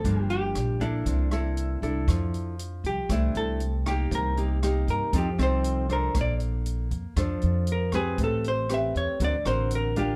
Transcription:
Already playing: hollow-body jazz guitar A4
0.04 upright bass G1, nylon-string guitar G2 F3 A#3 D4, kick, closed hi-hat
0.21 hollow-body jazz guitar G4
0.30 hollow-body jazz guitar G4, closed hi-hat
0.55 upright bass A#1, cross-stick, closed hi-hat
0.81 nylon-string guitar A#3 E4 A4, hollow-body jazz guitar D4, kick, closed hi-hat
1.06 upright bass C2, nylon-string guitar C3, kick, closed hi-hat
1.31 nylon-string guitar A#3 E4 A4, cross-stick, closed hi-hat
1.57 closed hi-hat
1.82 upright bass C2, nylon-string guitar D4 E4 A4, kick, closed hi-hat
2.08 upright bass F2, nylon-string guitar F3, kick, cross-stick, closed hi-hat
2.34 closed hi-hat
2.59 closed hi-hat
2.84 upright bass C2, hollow-body jazz guitar G4, kick, closed hi-hat
3.09 upright bass C2, nylon-string guitar C3 A3 D4 E4, hollow-body jazz guitar E4, kick, cross-stick, closed hi-hat
3.35 upright bass C2, hollow-body jazz guitar A4, closed hi-hat
3.60 closed hi-hat
3.86 nylon-string guitar A#3 D#4 G4, hollow-body jazz guitar G4, kick, cross-stick, closed hi-hat
4.11 upright bass C2, nylon-string guitar C3, hollow-body jazz guitar A#4, kick, closed hi-hat
4.37 nylon-string guitar A#3 D#4 G4, closed hi-hat
4.63 nylon-string guitar A#3 D#4 G4, cross-stick, closed hi-hat
4.88 upright bass G2, hollow-body jazz guitar A#4, kick, closed hi-hat
5.13 upright bass F2, nylon-string guitar F3 C4 D#4 A4, kick, closed hi-hat
5.18 hollow-body jazz guitar G4
5.38 upright bass C2, nylon-string guitar C4 D#4 A4, cross-stick, closed hi-hat
5.43 hollow-body jazz guitar C5
5.64 closed hi-hat
5.89 nylon-string guitar D4 A4 C5, hollow-body jazz guitar A#4, kick, closed hi-hat
6.15 upright bass A#1, nylon-string guitar A#3, kick, cross-stick, closed hi-hat
6.21 hollow-body jazz guitar D5
6.40 closed hi-hat
6.66 closed hi-hat
6.91 upright bass F2, kick, closed hi-hat
7.16 upright bass F2, nylon-string guitar F3 D4 A4 C5, kick, cross-stick, closed hi-hat
7.42 upright bass F2, closed hi-hat
7.67 closed hi-hat
7.72 hollow-body jazz guitar A#4
7.92 nylon-string guitar C4 G4 B4, hollow-body jazz guitar G#4, kick, cross-stick, closed hi-hat
8.18 upright bass A1, nylon-string guitar A3, kick, closed hi-hat
8.24 hollow-body jazz guitar A4
8.44 hollow-body jazz guitar C5, closed hi-hat
8.69 nylon-string guitar C4 G4 B4, cross-stick, closed hi-hat
8.74 hollow-body jazz guitar E5
8.95 upright bass E2, hollow-body jazz guitar C#5, kick, closed hi-hat
9.20 upright bass D2, nylon-string guitar D3 C4 F#4 A#4, kick, closed hi-hat
9.24 hollow-body jazz guitar D5
9.45 upright bass A1, nylon-string guitar C4 F#4 A#4, hollow-body jazz guitar C5, cross-stick, closed hi-hat
9.71 closed hi-hat
9.75 hollow-body jazz guitar A#4
9.96 nylon-string guitar D4 F4 A#4, hollow-body jazz guitar G4, kick, closed hi-hat

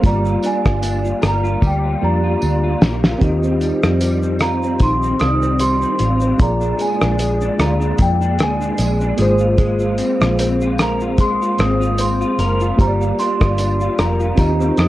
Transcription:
Already playing: clean electric guitar C4 F4 A#4
0.02 fingered electric bass G1, clean electric guitar G3, tine electric piano G3 A#3 F4, kick, closed hi-hat, tambourine, shaker
0.06 tine electric piano D5, celesta A#5
0.25 clean electric guitar F4, shaker
0.43 clean electric guitar D4, celesta G#5, closed hi-hat, tambourine, shaker
0.65 fingered electric bass G1, clean electric guitar F4, kick, cross-stick, shaker
0.82 clean electric guitar D4, closed hi-hat, tambourine, shaker
1.05 clean electric guitar F4, shaker
1.22 fingered electric bass G1, clean electric guitar A#4, cross-stick, closed hi-hat, tambourine, shaker
1.28 celesta A#5
1.43 clean electric guitar F4, shaker
1.61 fingered electric bass D2, clean electric guitar G3, kick, tambourine
1.67 celesta G5
1.83 clean electric guitar F4
2.01 fingered electric bass F2, tine electric piano A#3 F4 G4 D5, clean electric guitar D4, celesta A#5
2.23 clean electric guitar F4
2.40 fingered electric bass D2, clean electric guitar D4, tambourine
2.63 clean electric guitar F4
2.81 fingered electric bass A#1, clean electric guitar A#4, snare, tambourine
3.04 clean electric guitar F4, snare
3.19 fingered electric bass D#2, clean electric guitar D#3, tine electric piano C4 F4 G4, kick, closed hi-hat, shaker
3.24 tine electric piano D#5
3.43 clean electric guitar C4, shaker
3.60 clean electric guitar G3, closed hi-hat, tambourine, shaker
3.83 fingered electric bass F2, clean electric guitar C4, cross-stick, shaker
4.01 clean electric guitar G3, closed hi-hat, tambourine, shaker
4.23 clean electric guitar C4, shaker
4.39 clean electric guitar F4, celesta A#5, cross-stick, closed hi-hat, tambourine, shaker
4.63 clean electric guitar C4, shaker
4.80 fingered electric bass A#1, clean electric guitar D#3, celesta C6, kick, closed hi-hat, tambourine, shaker
5.03 clean electric guitar C4, shaker
5.20 fingered electric bass C2, clean electric guitar G3, celesta D#6, cross-stick, closed hi-hat, tambourine, shaker
5.43 clean electric guitar C4, shaker
5.60 clean electric guitar G3, celesta C6, closed hi-hat, tambourine, shaker
5.82 clean electric guitar C4, shaker
5.99 fingered electric bass A1, clean electric guitar F4, closed hi-hat, tambourine, shaker
6.21 clean electric guitar C4, shaker
6.38 fingered electric bass A#1, clean electric guitar A#2, tine electric piano A#3 F4 G#4, celesta A#5, kick, closed hi-hat, tambourine, shaker
6.43 tine electric piano D5
6.60 clean electric guitar D4, shaker
6.78 clean electric guitar G#3, celesta G#5, closed hi-hat, tambourine, shaker
7.01 fingered electric bass A#1, clean electric guitar D4, cross-stick, shaker
7.19 clean electric guitar G#3, closed hi-hat, tambourine, shaker
7.41 clean electric guitar D4, shaker
7.59 fingered electric bass D2, clean electric guitar F4, celesta A#5, cross-stick, closed hi-hat, tambourine, shaker
7.80 clean electric guitar D4, shaker
7.98 fingered electric bass F2, clean electric guitar A#2, celesta G5, kick, closed hi-hat, tambourine, shaker
8.20 clean electric guitar D4, shaker
8.38 fingered electric bass D2, clean electric guitar G#3, cross-stick, closed hi-hat, tambourine, shaker
8.42 celesta G#5
8.61 clean electric guitar D4, shaker
8.78 fingered electric bass A#1, clean electric guitar G#3, closed hi-hat, tambourine, shaker
9.01 clean electric guitar D4, shaker
9.17 fingered electric bass G#1, clean electric guitar G#3, tine electric piano A#3 F4 G#4, closed hi-hat, tambourine, shaker
9.22 tine electric piano C5
9.39 clean electric guitar F4, shaker
9.58 clean electric guitar G#3, kick, closed hi-hat, shaker
9.79 clean electric guitar F4, shaker
9.98 clean electric guitar C4, closed hi-hat, tambourine, shaker
10.20 fingered electric bass A#1, clean electric guitar F4, cross-stick, shaker
10.39 clean electric guitar C4, closed hi-hat, tambourine, shaker
10.61 clean electric guitar F4, shaker
10.78 clean electric guitar A#4, celesta A#5, cross-stick, closed hi-hat, tambourine, shaker
11.00 clean electric guitar F4, shaker
11.18 clean electric guitar G#3, celesta C6, kick, closed hi-hat, tambourine, shaker
11.41 clean electric guitar F4, shaker
11.58 fingered electric bass G#1, clean electric guitar C4, celesta D#6, cross-stick, closed hi-hat, shaker
11.80 clean electric guitar F4, shaker
11.97 clean electric guitar C4, celesta C6, closed hi-hat, tambourine, shaker
12.21 clean electric guitar F4, shaker
12.38 fingered electric bass F#1, clean electric guitar A#4, closed hi-hat, tambourine, shaker
12.60 clean electric guitar F4, shaker
12.76 fingered electric bass G1, clean electric guitar G3, tine electric piano A#3 F4 G4, kick, closed hi-hat, tambourine, shaker
12.81 tine electric piano C5, celesta A#5
12.88 tine electric piano D5
13.01 clean electric guitar F4, shaker
13.19 clean electric guitar D4, celesta C6, closed hi-hat, tambourine, shaker
13.40 fingered electric bass G1, clean electric guitar F4, kick, cross-stick, shaker
13.58 clean electric guitar D4, closed hi-hat, tambourine, shaker
13.80 clean electric guitar F4, shaker
13.98 fingered electric bass F1, clean electric guitar A#4, celesta A#5, cross-stick, closed hi-hat, tambourine, shaker
14.19 clean electric guitar F4, shaker
14.35 fingered electric bass D#2, clean electric guitar D#3, tine electric piano C4 F4 G4, celesta A#5, kick, closed hi-hat, tambourine, shaker
14.40 tine electric piano D#5
14.60 clean electric guitar C4, shaker
14.77 fingered electric bass F2, clean electric guitar G3, celesta D#6, cross-stick, closed hi-hat, shaker

